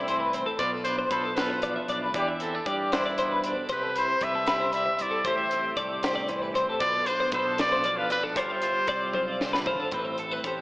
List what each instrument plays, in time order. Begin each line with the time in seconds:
Already playing: picked electric bass C2, clean electric guitar A2 A3 C4, trumpet E4
0.08 clean electric guitar E3 C5, closed hi-hat
0.20 clean electric guitar B4
0.33 clean electric guitar C4 C5, closed hi-hat
0.46 clean electric guitar A4
0.58 picked electric bass B1, clean electric guitar B2 F4 B4, trumpet D5, kick, closed hi-hat
0.73 clean electric guitar A4
0.84 clean electric guitar D4 B4, trumpet C5, closed hi-hat
0.99 clean electric guitar C5
1.11 picked electric bass B1, clean electric guitar B3 A4 B4, trumpet C5, kick, closed hi-hat
1.24 clean electric guitar A4
1.36 clean electric guitar F4 B4, trumpet B4, snare, closed hi-hat
1.50 clean electric guitar C5
1.62 clean electric guitar F3 D5, closed hi-hat
1.76 clean electric guitar E5
1.88 picked electric bass B1, clean electric guitar D4 D5, closed hi-hat
2.02 clean electric guitar B4
2.14 picked electric bass E2, clean electric guitar E3 D4 D5, trumpet G4, kick, closed hi-hat
2.28 clean electric guitar E5
2.40 clean electric guitar C4, trumpet A4, closed hi-hat
2.55 clean electric guitar D4
2.66 picked electric bass G2, clean electric guitar G3 D4 D5, trumpet G4, kick, closed hi-hat
2.92 clean electric guitar D4 C5, trumpet E4, snare, closed hi-hat
3.06 clean electric guitar D5
3.18 clean electric guitar B2 C5, closed hi-hat
3.31 clean electric guitar B4
3.44 clean electric guitar D4 C5, closed hi-hat
3.57 clean electric guitar A4
3.69 picked electric bass C2, clean electric guitar C3 G4 C5, trumpet B4, kick, closed hi-hat
3.83 clean electric guitar A4
3.96 clean electric guitar E4 B4, trumpet C5, closed hi-hat
4.08 clean electric guitar C5
4.21 picked electric bass C2, clean electric guitar G3 B4, trumpet E5, kick, closed hi-hat
4.35 clean electric guitar A4
4.47 clean electric guitar G4 B4, snare, closed hi-hat
4.59 clean electric guitar C5
4.72 clean electric guitar C3 D5, trumpet E5, closed hi-hat
4.86 clean electric guitar E5
4.97 picked electric bass C2, clean electric guitar C5, closed hi-hat
5.01 clean electric guitar E4, trumpet D5
5.11 clean electric guitar A4
5.25 picked electric bass A1, clean electric guitar A2 G4 C5, trumpet C5, kick, closed hi-hat
5.38 clean electric guitar E5
5.51 clean electric guitar C4, closed hi-hat
5.76 picked electric bass C2, clean electric guitar A3 G4 D5, kick, closed hi-hat
6.03 clean electric guitar G4 C5, snare, closed hi-hat
6.15 clean electric guitar D5
6.28 clean electric guitar E3 C5, closed hi-hat
6.42 clean electric guitar B4
6.55 clean electric guitar C4 C5, closed hi-hat
6.69 clean electric guitar A4
6.80 picked electric bass B1, clean electric guitar B2 F4 B4, trumpet D5, kick, closed hi-hat
6.95 clean electric guitar A4
7.06 clean electric guitar D4 B4, trumpet C5, closed hi-hat
7.20 clean electric guitar C5
7.32 picked electric bass B1, clean electric guitar B3 A4 B4, trumpet C5, kick, closed hi-hat
7.46 clean electric guitar A4
7.58 clean electric guitar F4 B4, trumpet D5, snare, closed hi-hat
7.72 clean electric guitar C5
7.84 clean electric guitar F3 D5, closed hi-hat
7.97 trumpet B4, clean electric guitar F5
8.10 picked electric bass B1, clean electric guitar C4 D5, trumpet B4, closed hi-hat
8.23 clean electric guitar D4 A4
8.36 picked electric bass G1, clean electric guitar G3 F4 C5, trumpet C5, kick, closed hi-hat
8.50 clean electric guitar E5
8.62 clean electric guitar F4, closed hi-hat
8.87 picked electric bass C2, clean electric guitar C4 F4 D5, kick, closed hi-hat
9.13 clean electric guitar F4 C5, high tom
9.28 clean electric guitar D5
9.41 clean electric guitar D3 C5, snare
9.53 clean electric guitar B4, snare
9.66 clean electric guitar F4 C5, floor tom
9.80 clean electric guitar A4
9.91 picked electric bass A1, clean electric guitar A2 C4 B4, kick, closed hi-hat
10.05 clean electric guitar C5
10.18 clean electric guitar A4, closed hi-hat
10.31 clean electric guitar B4
10.44 picked electric bass A1, clean electric guitar A3 G4 C5, kick, closed hi-hat
10.57 clean electric guitar A4